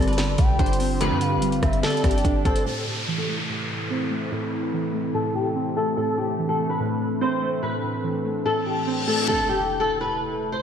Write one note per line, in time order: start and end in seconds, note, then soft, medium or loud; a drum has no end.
0.00 0.37 G1 loud
0.00 0.18 D3 loud
0.00 2.63 D3 medium
0.00 0.80 G3 medium
0.00 0.79 C4 medium
0.00 2.63 C4 medium
0.00 2.62 F4 medium
0.00 2.63 G4 medium
0.00 0.35 D5 medium
0.00 closed hi-hat medium
0.07 0.56 B4 medium
0.07 closed hi-hat medium
0.13 closed hi-hat soft
0.18 0.38 D3 medium
0.18 snare loud
0.18 closed hi-hat medium
0.38 0.58 B1 loud
0.38 1.00 D3 medium
0.38 0.97 G5 medium
0.38 kick loud
0.38 closed hi-hat medium
0.59 1.12 G1 loud
0.59 1.63 D4 loud
0.59 0.98 C5 medium
0.59 kick loud
0.59 closed hi-hat soft
0.66 closed hi-hat medium
0.73 closed hi-hat medium
0.80 1.61 C4 medium
0.80 open hi-hat medium
1.01 1.18 D2 loud
1.01 1.18 C3 loud
1.01 1.20 D3 loud
1.01 1.18 F3 loud
1.01 1.79 B4 loud
1.01 closed hi-hat medium
1.11 1.38 G2 loud
1.21 1.82 D3 medium
1.21 1.60 F5 medium
1.21 closed hi-hat medium
1.37 1.61 G1 loud
1.42 2.45 G3 medium
1.42 closed hi-hat medium
1.52 closed hi-hat soft
1.62 1.83 G1 loud
1.62 2.44 C4 medium
1.62 1.82 E5 medium
1.62 kick loud
1.62 cross-stick loud
1.62 closed hi-hat medium
1.73 closed hi-hat medium
1.83 2.03 D3 medium
1.83 2.01 A4 loud
1.83 2.42 D5 medium
1.83 snare loud
1.83 closed hi-hat soft
1.90 closed hi-hat medium
1.97 closed hi-hat medium
2.04 2.24 G1 loud
2.04 2.66 D3 medium
2.04 2.43 G4 medium
2.04 kick loud
2.04 cross-stick medium
2.04 closed hi-hat medium
2.11 closed hi-hat medium
2.18 closed hi-hat medium
2.25 2.45 G1 loud
2.25 2.66 D4 loud
2.25 kick loud
2.25 closed hi-hat medium
2.45 2.65 G1 loud
2.45 2.66 C4 medium
2.45 2.63 A4 medium
2.45 2.65 C5 medium
2.45 kick loud
2.45 closed hi-hat medium
2.56 closed hi-hat medium
2.66 2.86 A2 medium
2.66 9.24 C3 medium
2.66 9.24 A3 medium
2.66 5.94 E4 medium
2.66 9.24 A4 medium
2.66 2.84 A4 loud
2.66 downlifter medium
2.87 3.48 A2 medium
2.87 3.16 G4 medium
3.08 4.11 E3 medium
3.18 3.36 A4 medium
3.28 4.10 A3 medium
3.38 3.87 B4 medium
3.49 3.68 A2 medium
3.70 4.30 A2 medium
3.90 4.94 C4 loud
3.90 4.29 C5 medium
4.11 4.93 A3 medium
4.32 4.51 A2 medium
4.32 5.10 B4 medium
4.52 5.13 A2 medium
4.73 5.76 E3 medium
4.94 5.75 A3 medium
5.14 5.34 A2 medium
5.14 5.32 A4 loud
5.35 5.96 A2 medium
5.35 5.74 G4 medium
5.56 6.59 C4 medium
5.76 6.58 A3 medium
5.76 5.94 A4 medium
5.97 6.17 A2 loud
5.97 9.25 D4 medium
5.97 6.15 A4 loud
6.18 6.79 A2 medium
6.18 6.47 G4 medium
6.39 7.42 E3 medium
6.49 6.67 A4 medium
6.59 7.41 A3 medium
6.70 7.18 B4 medium
6.80 6.99 A2 loud
7.01 7.61 A2 medium
7.21 8.25 C4 loud
7.21 7.60 C5 medium
7.42 8.23 A3 medium
7.63 7.82 A2 medium
7.63 8.41 B4 loud
7.83 8.44 A2 medium
8.04 9.07 E3 medium
8.25 9.06 A3 medium
8.45 8.65 A2 medium
8.45 8.63 A4 loud
8.45 reverse cymbal medium
8.66 9.28 A2 medium
8.66 9.05 G4 medium
8.87 9.28 C4 loud
9.08 9.28 A3 medium
9.08 9.25 A4 medium
9.28 10.62 C3 medium
9.28 10.62 A3 medium
9.28 10.62 E4 medium
9.28 10.62 A4 medium
9.28 9.46 A4 loud
9.28 impact medium
9.49 9.78 G4 medium
9.80 9.98 A4 medium
10.01 10.49 B4 medium
10.52 10.62 C5 medium